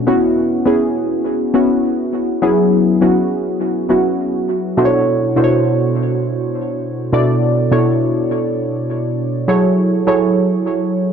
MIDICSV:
0, 0, Header, 1, 2, 480
1, 0, Start_track
1, 0, Tempo, 588235
1, 55, Time_signature, 4, 2, 24, 8
1, 9080, End_track
2, 0, Start_track
2, 0, Title_t, "Synth keys"
2, 0, Program_c, 0, 88
2, 0, Control_c, 0, 64, 127
2, 55, Note_on_c, 0, 59, 84
2, 59, Note_on_c, 0, 61, 80
2, 62, Note_on_c, 0, 64, 78
2, 65, Control_c, 0, 64, 0
2, 65, Note_on_c, 0, 66, 94
2, 205, Control_c, 0, 64, 127
2, 471, Note_off_c, 0, 59, 0
2, 473, Note_off_c, 0, 61, 0
2, 475, Note_off_c, 0, 64, 0
2, 476, Note_off_c, 0, 66, 0
2, 535, Note_on_c, 0, 59, 81
2, 538, Note_on_c, 0, 61, 74
2, 542, Note_on_c, 0, 64, 77
2, 546, Note_on_c, 0, 68, 92
2, 1153, Note_off_c, 0, 59, 0
2, 1154, Note_off_c, 0, 61, 0
2, 1157, Note_off_c, 0, 64, 0
2, 1158, Note_off_c, 0, 68, 0
2, 1255, Note_on_c, 0, 59, 80
2, 1258, Note_on_c, 0, 61, 73
2, 1262, Note_on_c, 0, 64, 73
2, 1265, Note_on_c, 0, 66, 85
2, 1873, Note_off_c, 0, 59, 0
2, 1874, Note_off_c, 0, 61, 0
2, 1876, Note_off_c, 0, 64, 0
2, 1878, Note_off_c, 0, 66, 0
2, 1973, Note_on_c, 0, 54, 87
2, 1976, Note_on_c, 0, 59, 83
2, 1979, Note_on_c, 0, 61, 75
2, 1981, Note_on_c, 0, 64, 85
2, 1983, Note_on_c, 0, 68, 92
2, 1987, Control_c, 0, 64, 0
2, 2127, Control_c, 0, 64, 127
2, 2390, Note_off_c, 0, 54, 0
2, 2392, Note_off_c, 0, 59, 0
2, 2393, Note_off_c, 0, 61, 0
2, 2394, Note_off_c, 0, 64, 0
2, 2395, Note_off_c, 0, 68, 0
2, 2457, Note_on_c, 0, 54, 82
2, 2460, Note_on_c, 0, 59, 73
2, 2462, Note_on_c, 0, 61, 77
2, 2465, Note_on_c, 0, 64, 73
2, 2467, Note_on_c, 0, 66, 88
2, 3074, Note_off_c, 0, 54, 0
2, 3075, Note_off_c, 0, 59, 0
2, 3076, Note_off_c, 0, 61, 0
2, 3078, Note_off_c, 0, 64, 0
2, 3079, Note_off_c, 0, 66, 0
2, 3174, Note_on_c, 0, 54, 74
2, 3175, Note_on_c, 0, 59, 71
2, 3178, Note_on_c, 0, 61, 70
2, 3181, Note_on_c, 0, 64, 73
2, 3183, Note_on_c, 0, 66, 79
2, 3792, Note_off_c, 0, 54, 0
2, 3793, Note_off_c, 0, 59, 0
2, 3794, Note_off_c, 0, 61, 0
2, 3796, Note_off_c, 0, 64, 0
2, 3797, Note_off_c, 0, 66, 0
2, 3894, Note_on_c, 0, 47, 93
2, 3896, Note_on_c, 0, 62, 82
2, 3900, Note_on_c, 0, 64, 80
2, 3901, Note_on_c, 0, 66, 84
2, 3903, Note_on_c, 0, 69, 75
2, 3904, Control_c, 0, 64, 0
2, 3904, Note_on_c, 0, 72, 75
2, 3959, Note_on_c, 0, 73, 102
2, 3967, Note_off_c, 0, 72, 0
2, 4059, Control_c, 0, 64, 127
2, 4311, Note_off_c, 0, 47, 0
2, 4312, Note_off_c, 0, 62, 0
2, 4313, Note_off_c, 0, 64, 0
2, 4314, Note_off_c, 0, 66, 0
2, 4315, Note_off_c, 0, 69, 0
2, 4343, Note_off_c, 0, 73, 0
2, 4374, Note_on_c, 0, 47, 83
2, 4377, Note_on_c, 0, 62, 79
2, 4379, Note_on_c, 0, 64, 79
2, 4381, Note_on_c, 0, 66, 76
2, 4383, Note_on_c, 0, 69, 75
2, 4385, Note_on_c, 0, 72, 72
2, 4437, Note_on_c, 0, 73, 97
2, 4448, Note_off_c, 0, 72, 0
2, 5177, Note_off_c, 0, 47, 0
2, 5178, Note_off_c, 0, 62, 0
2, 5179, Note_off_c, 0, 64, 0
2, 5180, Note_off_c, 0, 66, 0
2, 5181, Note_off_c, 0, 69, 0
2, 5209, Note_off_c, 0, 73, 0
2, 5815, Note_on_c, 0, 47, 88
2, 5817, Note_on_c, 0, 62, 78
2, 5818, Note_on_c, 0, 64, 77
2, 5821, Note_on_c, 0, 66, 81
2, 5823, Note_on_c, 0, 69, 79
2, 5825, Note_on_c, 0, 74, 102
2, 6231, Note_off_c, 0, 47, 0
2, 6232, Note_off_c, 0, 62, 0
2, 6233, Note_off_c, 0, 64, 0
2, 6234, Note_off_c, 0, 66, 0
2, 6235, Note_off_c, 0, 69, 0
2, 6236, Note_off_c, 0, 74, 0
2, 6293, Note_on_c, 0, 47, 90
2, 6295, Note_on_c, 0, 62, 81
2, 6297, Note_on_c, 0, 64, 82
2, 6299, Note_on_c, 0, 66, 76
2, 6301, Note_on_c, 0, 69, 78
2, 6303, Note_on_c, 0, 73, 98
2, 7097, Note_off_c, 0, 47, 0
2, 7097, Note_off_c, 0, 62, 0
2, 7098, Note_off_c, 0, 64, 0
2, 7100, Note_off_c, 0, 66, 0
2, 7100, Note_off_c, 0, 69, 0
2, 7101, Note_off_c, 0, 73, 0
2, 7735, Note_on_c, 0, 54, 91
2, 7737, Note_on_c, 0, 64, 77
2, 7739, Note_on_c, 0, 68, 82
2, 7742, Note_on_c, 0, 69, 82
2, 7744, Note_on_c, 0, 73, 100
2, 7746, Control_c, 0, 64, 0
2, 7879, Control_c, 0, 64, 127
2, 8151, Note_off_c, 0, 54, 0
2, 8152, Note_off_c, 0, 64, 0
2, 8153, Note_off_c, 0, 68, 0
2, 8155, Note_off_c, 0, 69, 0
2, 8156, Note_off_c, 0, 73, 0
2, 8216, Note_on_c, 0, 54, 91
2, 8218, Note_on_c, 0, 64, 84
2, 8221, Note_on_c, 0, 68, 83
2, 8222, Note_on_c, 0, 69, 80
2, 8225, Note_on_c, 0, 73, 102
2, 9018, Note_off_c, 0, 54, 0
2, 9019, Note_off_c, 0, 64, 0
2, 9020, Note_off_c, 0, 68, 0
2, 9021, Note_off_c, 0, 69, 0
2, 9023, Note_off_c, 0, 73, 0
2, 9080, End_track
0, 0, End_of_file